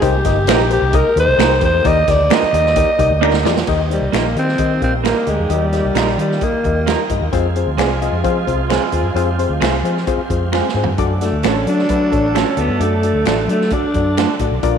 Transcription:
Already playing: G#3
0.02 C2 C3 A#3 D#4 G4 A#4 C5, kick, closed hi-hat
0.25 G1 D#4 G4 A#4 D#5, kick, snare, closed hi-hat
0.47 A#1 A#3 D#4 G4 A#4 C5, finger snap, snare, closed hi-hat
0.59 snare
0.70 D#4 G4 A#4 C5, closed hi-hat
0.82 C2
0.93 D#4 G4 A#4 D#5, kick, closed hi-hat
1.16 D#2 D#4 G4 A#4 C5, closed hi-hat
1.27 C2
1.38 C2 A#3 D#4 G4 A#4 C5, finger snap, snare, closed hi-hat
1.61 E2 D#4 G4 A#4 C5, kick, closed hi-hat
1.65 C5
1.85 D#2 D#3 D#4 G4 A#4 D5 D#5, kick, closed hi-hat
2.08 D2 D#4 G4 A#4 D5, kick, snare, closed hi-hat
2.30 A#3 D4 D#4 G4 A#4 D5 D#5, finger snap, snare, closed hi-hat
2.42 muted fingered electric bass stroke, snare
2.53 D#2 D#4 G4 A#4 D5, closed hi-hat
2.66 snare
2.76 D#4 G4 A#4 D5, kick, closed hi-hat
2.99 C2 D#4 G4 A#4 D5, kick, closed hi-hat
3.11 D2
3.21 A#3 D4 D#4 G4 A#4 D5, finger snap
3.33 snare
3.45 E2 D#4 G4 A#4 D5, snare
3.57 snare
3.67 D#2 D#3 G3 A#3 D#4 G4 A#4 D#5, kick, crash
3.90 G3 D#4 G4 A#4 C5, closed hi-hat
4.01 C2
4.12 A#1 A#3 D#4 G4 A#4 D#5, finger snap, snare, closed hi-hat
4.35 D#3 C4 D#4 G4 A#4 D#5, closed hi-hat
4.48 snare
4.58 D#3 G3 A#3 D#4 G4 A#4 D#5, kick, closed hi-hat
4.81 A#1 C4 D#4 G4 A#4 F5, kick, closed hi-hat
5.04 A#3 D#4 G4 A#4 D#5, finger snap, snare, closed hi-hat
5.27 D2 G#3 D#4 G4 A#4 D#5, closed hi-hat
5.39 E2
5.50 D#2 D#3 G3 D#4 F4 G4 A#4 D#5, closed hi-hat
5.73 D#4 G4 A#4 D#5, snare, closed hi-hat
5.84 C2
5.95 A#1 A#3 D#4 G4 A#4 D#5, finger snap, snare, closed hi-hat
6.07 snare
6.18 D#3 G3 D#4 G4 A#4 D#5, closed hi-hat
6.31 snare
6.41 A#3 D#4 G4 A#4 D#5, kick, closed hi-hat
6.53 muted fingered electric bass stroke
6.64 D#2 D#4 G4 A#4 D#5, kick, closed hi-hat
6.86 A#3 D#4 G4 A#4 D#5, finger snap, snare, closed hi-hat
7.09 G2 D#4 G4 A#4 D#5, kick, closed hi-hat
7.21 D#2
7.31 F2 C3 F3 G#3 C4 F4 G#4 C5, kick, closed hi-hat
7.56 C4 F4 G#4 C5, closed hi-hat
7.66 D2
7.77 C2 G#3 C4 F4 G#4 D5, finger snap, snare, closed hi-hat
8.01 C4 F4 G#4 D#5, closed hi-hat
8.12 F2
8.24 F3 C4 F4 G#4 C5, kick, closed hi-hat
8.47 C2 C4 F4 G#4 C5, kick, closed hi-hat
8.70 G#3 C4 F4 G#4 C5, finger snap, snare, closed hi-hat
8.92 D#2 C4 F4 G#4 C5, closed hi-hat
9.03 F#2
9.14 F2 C4 F4 G4 G#4 C5, closed hi-hat
9.39 C4 F4 G#4 C5, closed hi-hat
9.49 D2
9.61 C2 G#3 C4 F4 G#4 C5, finger snap, snare, closed hi-hat
9.73 snare
9.83 F3 C4 F4 G#4 C5, closed hi-hat
9.97 snare
10.07 C4 F4 G#4 C5, kick, closed hi-hat
10.18 muted fingered electric bass stroke
10.30 F2 C4 F4 G#4 C5, kick, closed hi-hat
10.52 G#3 C4 F4 G#4 C5, finger snap, snare
10.69 snare
10.74 G#2 C4 F4 G#4 C5
10.84 G2, floor tom
10.98 F#2 D3 F#3 A3 D4 F#4 A4 D5, kick, closed hi-hat
11.21 A3 D4 F#4 A4 D5, snare, closed hi-hat
11.32 D2
11.43 A1 A3 C#4 D4 F#4 A4 D5, finger snap, snare, closed hi-hat
11.67 F#3 D4 F#4 A4 D5, closed hi-hat
11.79 snare
11.89 F#3 D4 F#4 A4 B4, kick, closed hi-hat
12.11 A1 D4 F#4 A4 C#5, kick, closed hi-hat
12.34 A3 C#4 D4 F#4 A4 C#5, finger snap, snare, closed hi-hat
12.57 D2 B3 D4 F#4 A4 D5, closed hi-hat
12.68 G2
12.80 F#2 A3 D4 F#4 A4 D5, closed hi-hat
13.03 D4 F#4 A4 D5, closed hi-hat
13.13 D2
13.25 A1 A3 D4 F#4 A4 D5, finger snap, snare, closed hi-hat
13.48 F#3 A3 D4 F#4 A4 D5, closed hi-hat
13.61 snare
13.70 D4 F#4 A4 D5, kick, closed hi-hat
13.83 muted fingered electric bass stroke
13.94 F#2 D4 F#4 A4 D5, kick, closed hi-hat
14.17 A3 D4 F#4 A4 D5, finger snap, snare, closed hi-hat
14.39 A2 D4 F#4 A4 D5, kick, closed hi-hat
14.52 B1
14.63 A#1 A#2 F3 A#3 D4 F4 A#4 D5, kick, closed hi-hat

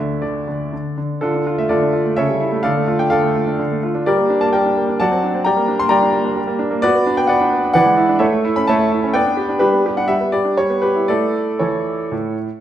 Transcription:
Already playing: D2 D3 D4 A4 E5
0.22 D3 D5
0.48 D3
0.73 D3
0.98 D3
1.21 D3 D4 F4 A4
1.35 D4
1.47 F4
1.58 A3 E5
1.69 D3 F4 A4 D5
1.83 D4
1.93 F4
2.06 A3
2.16 C#3 A4 C#5 E5
2.29 G3
2.41 E4
2.52 A3
2.63 D3 A4 D5 F5
2.77 A3
2.88 F4
2.99 D4 G5
3.10 D3 A4 D5 F5
3.24 A3
3.36 F4
3.47 D4
3.59 D3
3.72 A3
3.83 F4
3.95 D4
4.06 G3 G4 A#4 D5
4.19 A#3
4.30 D4
4.41 A#3 A5
4.53 G3 A#4 D5 G5
4.66 D4
4.77 A#3
4.89 D4
5.00 F#3 D5 F#5 A5
5.11 C4
5.23 D4
5.35 C4
5.45 G3 D5 G5 A#5
5.57 A#3
5.68 D4
5.79 A#3 C6
5.89 G3 D5 G5 A#5
6.02 D4
6.13 A#3
6.25 D4
6.36 G3
6.47 A#3
6.59 D4
6.71 A#3
6.82 B3 F#4 B4 D5
6.95 B3
7.07 D4
7.17 B3 G5
7.27 B3 B4 D5 F#5
7.41 D4
7.52 B3
7.64 D4
7.73 E3 B4 D5 F#5
7.86 G#3
7.97 E4
8.09 D4
8.19 A3 A4 C#5 E5
8.33 A3
8.45 E4
8.56 C#4 B5
8.67 A3 C#5 E5 A5
8.79 A3
8.92 E4
9.04 C#4
9.14 B3 B4 D5 G5
9.26 D4
9.37 G4
9.49 D4
9.59 G3 D4 G4 B4
9.73 B3
9.86 G4
9.97 D4 F#5
10.08 G3 E5
10.21 B3
10.32 G4 D5
10.45 D4
10.57 G3 C#5
10.70 B3
10.82 G4 B4
10.95 E4
11.08 A3 E4 A4 D5
11.59 E3 E4 A4 C#5
12.12 A2

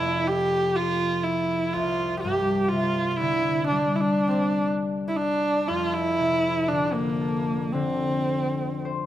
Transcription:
Already playing: F2 C3 A3 E4
0.27 G4
0.76 F4
1.23 E4
1.73 C2 F4
2.21 G2 G4
2.64 G4
2.69 C3 F4
3.11 F4
3.17 D3 E4
3.67 D4
3.71 G3
3.96 E4
4.00 D4
4.28 C4 D4
5.08 E4
5.17 D4
5.68 F2 F4
5.93 E4
6.20 C3
6.68 D3 D4
6.93 A#3
7.21 A4
7.72 D3 C4
8.85 C5

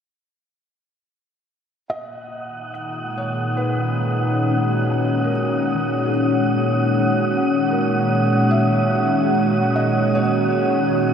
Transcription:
1.90 A#2 D#5 F#5 D#6
2.39 D#3
2.69 G#3
3.18 C#5
3.55 C#4 B4
4.05 F#4
4.51 C#4
4.90 G#5
5.24 A#4
5.58 D#6
5.75 D#3
6.05 G#4
7.71 A#4
8.51 E5
9.76 D#5
10.15 C#5

